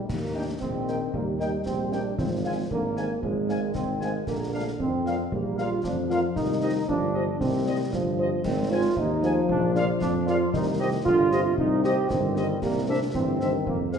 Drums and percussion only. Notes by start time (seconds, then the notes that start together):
0.09 concert bass drum, snare, crash
0.62 concert bass drum
0.88 snare
1.14 concert bass drum
1.40 snare
1.66 concert bass drum, snare
1.92 snare
2.19 concert bass drum, snare
2.71 concert bass drum
2.97 snare
3.23 concert bass drum
3.49 snare
3.75 concert bass drum, snare
4.01 snare
4.27 concert bass drum, snare, crash
4.80 concert bass drum
5.06 snare
5.32 concert bass drum
5.58 snare
5.84 concert bass drum, snare
6.10 snare
6.36 concert bass drum, snare
6.89 concert bass drum
7.41 concert bass drum, snare
7.93 concert bass drum, snare
8.45 concert bass drum, snare, crash
8.97 concert bass drum
9.23 snare
9.49 concert bass drum
9.75 snare
10.01 concert bass drum, snare
10.27 snare
10.54 concert bass drum, snare
11.06 concert bass drum
11.32 snare
11.58 concert bass drum
11.84 snare
12.10 concert bass drum, snare
12.36 snare
12.62 concert bass drum, snare, crash
13.14 concert bass drum
13.41 snare
13.67 concert bass drum
13.93 snare